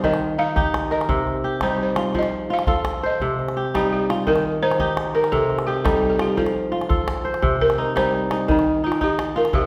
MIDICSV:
0, 0, Header, 1, 4, 480
1, 0, Start_track
1, 0, Tempo, 351494
1, 1490, Time_signature, 12, 3, 24, 8
1, 13194, End_track
2, 0, Start_track
2, 0, Title_t, "Balafon"
2, 0, Program_c, 0, 12
2, 63, Note_on_c, 0, 75, 86
2, 530, Note_on_c, 0, 77, 95
2, 549, Note_off_c, 0, 75, 0
2, 1257, Note_on_c, 0, 75, 72
2, 1273, Note_off_c, 0, 77, 0
2, 1478, Note_off_c, 0, 75, 0
2, 2232, Note_on_c, 0, 72, 73
2, 2448, Note_off_c, 0, 72, 0
2, 2495, Note_on_c, 0, 72, 71
2, 2925, Note_off_c, 0, 72, 0
2, 2985, Note_on_c, 0, 75, 89
2, 3457, Note_off_c, 0, 75, 0
2, 3460, Note_on_c, 0, 77, 100
2, 4182, Note_on_c, 0, 75, 73
2, 4184, Note_off_c, 0, 77, 0
2, 4387, Note_off_c, 0, 75, 0
2, 5141, Note_on_c, 0, 67, 78
2, 5345, Note_off_c, 0, 67, 0
2, 5361, Note_on_c, 0, 67, 80
2, 5847, Note_on_c, 0, 70, 93
2, 5849, Note_off_c, 0, 67, 0
2, 6285, Note_off_c, 0, 70, 0
2, 6317, Note_on_c, 0, 72, 98
2, 7029, Note_on_c, 0, 70, 86
2, 7054, Note_off_c, 0, 72, 0
2, 7265, Note_on_c, 0, 69, 88
2, 7276, Note_off_c, 0, 70, 0
2, 7738, Note_on_c, 0, 67, 76
2, 7761, Note_off_c, 0, 69, 0
2, 7990, Note_off_c, 0, 67, 0
2, 7990, Note_on_c, 0, 69, 81
2, 8127, Note_off_c, 0, 69, 0
2, 8143, Note_on_c, 0, 69, 68
2, 8306, Note_off_c, 0, 69, 0
2, 8324, Note_on_c, 0, 69, 74
2, 8480, Note_off_c, 0, 69, 0
2, 8489, Note_on_c, 0, 67, 74
2, 8712, Note_on_c, 0, 69, 72
2, 8725, Note_off_c, 0, 67, 0
2, 9612, Note_off_c, 0, 69, 0
2, 10399, Note_on_c, 0, 70, 99
2, 10882, Note_off_c, 0, 70, 0
2, 10883, Note_on_c, 0, 72, 96
2, 11608, Note_off_c, 0, 72, 0
2, 11623, Note_on_c, 0, 63, 84
2, 12044, Note_off_c, 0, 63, 0
2, 12107, Note_on_c, 0, 65, 82
2, 12324, Note_off_c, 0, 65, 0
2, 12342, Note_on_c, 0, 67, 82
2, 12800, Note_on_c, 0, 70, 87
2, 12807, Note_off_c, 0, 67, 0
2, 13028, Note_off_c, 0, 70, 0
2, 13043, Note_on_c, 0, 67, 88
2, 13194, Note_off_c, 0, 67, 0
2, 13194, End_track
3, 0, Start_track
3, 0, Title_t, "Kora"
3, 0, Program_c, 1, 46
3, 0, Note_on_c, 1, 63, 62
3, 0, Note_on_c, 1, 65, 58
3, 0, Note_on_c, 1, 67, 57
3, 50, Note_on_c, 1, 51, 74
3, 517, Note_off_c, 1, 63, 0
3, 523, Note_on_c, 1, 63, 63
3, 758, Note_off_c, 1, 63, 0
3, 759, Note_off_c, 1, 67, 0
3, 764, Note_on_c, 1, 63, 74
3, 764, Note_on_c, 1, 67, 63
3, 1243, Note_on_c, 1, 70, 63
3, 1485, Note_on_c, 1, 48, 79
3, 1558, Note_off_c, 1, 51, 0
3, 1879, Note_off_c, 1, 65, 0
3, 1963, Note_off_c, 1, 67, 0
3, 1969, Note_on_c, 1, 67, 62
3, 2214, Note_off_c, 1, 63, 0
3, 2218, Note_on_c, 1, 55, 76
3, 2220, Note_on_c, 1, 63, 68
3, 2689, Note_on_c, 1, 65, 63
3, 2929, Note_on_c, 1, 53, 72
3, 2981, Note_off_c, 1, 70, 0
3, 3006, Note_off_c, 1, 48, 0
3, 3006, Note_off_c, 1, 55, 0
3, 3410, Note_off_c, 1, 65, 0
3, 3416, Note_on_c, 1, 65, 65
3, 3647, Note_off_c, 1, 65, 0
3, 3652, Note_on_c, 1, 65, 77
3, 3658, Note_on_c, 1, 69, 65
3, 3897, Note_off_c, 1, 67, 0
3, 4143, Note_on_c, 1, 72, 66
3, 4390, Note_on_c, 1, 48, 79
3, 4435, Note_off_c, 1, 63, 0
3, 4452, Note_off_c, 1, 53, 0
3, 4871, Note_on_c, 1, 67, 61
3, 5112, Note_on_c, 1, 63, 65
3, 5118, Note_on_c, 1, 55, 77
3, 5457, Note_off_c, 1, 69, 0
3, 5590, Note_off_c, 1, 65, 0
3, 5596, Note_on_c, 1, 65, 60
3, 5765, Note_off_c, 1, 72, 0
3, 5827, Note_on_c, 1, 51, 77
3, 5895, Note_off_c, 1, 48, 0
3, 5895, Note_off_c, 1, 55, 0
3, 6311, Note_off_c, 1, 63, 0
3, 6317, Note_on_c, 1, 63, 64
3, 6546, Note_off_c, 1, 63, 0
3, 6546, Note_off_c, 1, 67, 0
3, 6551, Note_on_c, 1, 63, 76
3, 6551, Note_on_c, 1, 67, 64
3, 7030, Note_on_c, 1, 70, 60
3, 7265, Note_on_c, 1, 48, 78
3, 7337, Note_off_c, 1, 51, 0
3, 7663, Note_off_c, 1, 65, 0
3, 7741, Note_off_c, 1, 67, 0
3, 7747, Note_on_c, 1, 67, 63
3, 7979, Note_off_c, 1, 63, 0
3, 7981, Note_on_c, 1, 55, 72
3, 7985, Note_on_c, 1, 63, 62
3, 8455, Note_on_c, 1, 65, 56
3, 8702, Note_on_c, 1, 53, 73
3, 8768, Note_off_c, 1, 70, 0
3, 8775, Note_off_c, 1, 48, 0
3, 8775, Note_off_c, 1, 55, 0
3, 9167, Note_off_c, 1, 65, 0
3, 9173, Note_on_c, 1, 65, 61
3, 9406, Note_off_c, 1, 65, 0
3, 9412, Note_on_c, 1, 65, 71
3, 9414, Note_on_c, 1, 69, 61
3, 9675, Note_off_c, 1, 67, 0
3, 9895, Note_on_c, 1, 72, 59
3, 10138, Note_on_c, 1, 48, 79
3, 10200, Note_off_c, 1, 63, 0
3, 10211, Note_off_c, 1, 53, 0
3, 10625, Note_on_c, 1, 63, 62
3, 10864, Note_off_c, 1, 63, 0
3, 10865, Note_on_c, 1, 55, 76
3, 10870, Note_on_c, 1, 63, 67
3, 11214, Note_off_c, 1, 69, 0
3, 11346, Note_off_c, 1, 63, 0
3, 11351, Note_on_c, 1, 63, 61
3, 11479, Note_off_c, 1, 65, 0
3, 11517, Note_off_c, 1, 72, 0
3, 11584, Note_on_c, 1, 51, 80
3, 11643, Note_off_c, 1, 48, 0
3, 11643, Note_off_c, 1, 55, 0
3, 12063, Note_off_c, 1, 63, 0
3, 12068, Note_on_c, 1, 63, 66
3, 12297, Note_off_c, 1, 63, 0
3, 12303, Note_on_c, 1, 63, 79
3, 12779, Note_on_c, 1, 65, 65
3, 13016, Note_on_c, 1, 48, 78
3, 13073, Note_off_c, 1, 51, 0
3, 13194, Note_off_c, 1, 48, 0
3, 13194, Note_off_c, 1, 63, 0
3, 13194, Note_off_c, 1, 65, 0
3, 13194, End_track
4, 0, Start_track
4, 0, Title_t, "Calabash"
4, 51, Note_on_c, 9, 36, 59
4, 186, Note_on_c, 9, 38, 43
4, 187, Note_off_c, 9, 36, 0
4, 322, Note_off_c, 9, 38, 0
4, 777, Note_on_c, 9, 36, 61
4, 914, Note_off_c, 9, 36, 0
4, 1015, Note_on_c, 9, 38, 58
4, 1151, Note_off_c, 9, 38, 0
4, 1383, Note_on_c, 9, 38, 45
4, 1489, Note_on_c, 9, 36, 57
4, 1520, Note_off_c, 9, 38, 0
4, 1625, Note_off_c, 9, 36, 0
4, 1737, Note_on_c, 9, 38, 19
4, 1873, Note_off_c, 9, 38, 0
4, 2197, Note_on_c, 9, 36, 57
4, 2197, Note_on_c, 9, 38, 56
4, 2334, Note_off_c, 9, 36, 0
4, 2334, Note_off_c, 9, 38, 0
4, 2680, Note_on_c, 9, 38, 57
4, 2817, Note_off_c, 9, 38, 0
4, 2929, Note_on_c, 9, 36, 57
4, 3041, Note_on_c, 9, 38, 43
4, 3065, Note_off_c, 9, 36, 0
4, 3178, Note_off_c, 9, 38, 0
4, 3533, Note_on_c, 9, 38, 43
4, 3647, Note_on_c, 9, 36, 59
4, 3670, Note_off_c, 9, 38, 0
4, 3783, Note_off_c, 9, 36, 0
4, 3888, Note_on_c, 9, 38, 58
4, 4025, Note_off_c, 9, 38, 0
4, 4372, Note_on_c, 9, 36, 51
4, 4509, Note_off_c, 9, 36, 0
4, 4633, Note_on_c, 9, 38, 18
4, 4759, Note_off_c, 9, 38, 0
4, 4759, Note_on_c, 9, 38, 44
4, 4896, Note_off_c, 9, 38, 0
4, 5123, Note_on_c, 9, 36, 53
4, 5123, Note_on_c, 9, 38, 50
4, 5259, Note_off_c, 9, 36, 0
4, 5259, Note_off_c, 9, 38, 0
4, 5601, Note_on_c, 9, 38, 55
4, 5737, Note_off_c, 9, 38, 0
4, 5832, Note_on_c, 9, 36, 56
4, 5949, Note_on_c, 9, 38, 45
4, 5968, Note_off_c, 9, 36, 0
4, 6086, Note_off_c, 9, 38, 0
4, 6439, Note_on_c, 9, 38, 45
4, 6549, Note_on_c, 9, 36, 62
4, 6575, Note_off_c, 9, 38, 0
4, 6685, Note_off_c, 9, 36, 0
4, 6790, Note_on_c, 9, 38, 59
4, 6926, Note_off_c, 9, 38, 0
4, 7155, Note_on_c, 9, 38, 46
4, 7276, Note_off_c, 9, 38, 0
4, 7276, Note_on_c, 9, 36, 60
4, 7276, Note_on_c, 9, 38, 17
4, 7413, Note_off_c, 9, 36, 0
4, 7413, Note_off_c, 9, 38, 0
4, 7509, Note_on_c, 9, 38, 19
4, 7629, Note_off_c, 9, 38, 0
4, 7629, Note_on_c, 9, 38, 50
4, 7765, Note_off_c, 9, 38, 0
4, 7996, Note_on_c, 9, 36, 57
4, 7996, Note_on_c, 9, 38, 58
4, 8133, Note_off_c, 9, 36, 0
4, 8133, Note_off_c, 9, 38, 0
4, 8459, Note_on_c, 9, 38, 59
4, 8596, Note_off_c, 9, 38, 0
4, 8708, Note_on_c, 9, 36, 57
4, 8827, Note_on_c, 9, 38, 43
4, 8844, Note_off_c, 9, 36, 0
4, 8964, Note_off_c, 9, 38, 0
4, 9188, Note_on_c, 9, 38, 19
4, 9306, Note_off_c, 9, 38, 0
4, 9306, Note_on_c, 9, 38, 44
4, 9428, Note_on_c, 9, 36, 62
4, 9443, Note_off_c, 9, 38, 0
4, 9565, Note_off_c, 9, 36, 0
4, 9664, Note_on_c, 9, 38, 61
4, 9778, Note_off_c, 9, 38, 0
4, 9778, Note_on_c, 9, 38, 19
4, 9914, Note_off_c, 9, 38, 0
4, 10026, Note_on_c, 9, 38, 45
4, 10150, Note_on_c, 9, 36, 55
4, 10163, Note_off_c, 9, 38, 0
4, 10287, Note_off_c, 9, 36, 0
4, 10383, Note_on_c, 9, 38, 19
4, 10513, Note_off_c, 9, 38, 0
4, 10513, Note_on_c, 9, 38, 45
4, 10649, Note_off_c, 9, 38, 0
4, 10882, Note_on_c, 9, 36, 55
4, 10882, Note_on_c, 9, 38, 55
4, 11019, Note_off_c, 9, 36, 0
4, 11019, Note_off_c, 9, 38, 0
4, 11347, Note_on_c, 9, 38, 55
4, 11484, Note_off_c, 9, 38, 0
4, 11596, Note_on_c, 9, 36, 55
4, 11728, Note_on_c, 9, 38, 45
4, 11732, Note_off_c, 9, 36, 0
4, 11865, Note_off_c, 9, 38, 0
4, 12179, Note_on_c, 9, 38, 45
4, 12309, Note_on_c, 9, 36, 64
4, 12315, Note_off_c, 9, 38, 0
4, 12446, Note_off_c, 9, 36, 0
4, 12549, Note_on_c, 9, 38, 61
4, 12685, Note_off_c, 9, 38, 0
4, 12905, Note_on_c, 9, 38, 43
4, 13020, Note_on_c, 9, 36, 58
4, 13041, Note_off_c, 9, 38, 0
4, 13156, Note_off_c, 9, 36, 0
4, 13194, End_track
0, 0, End_of_file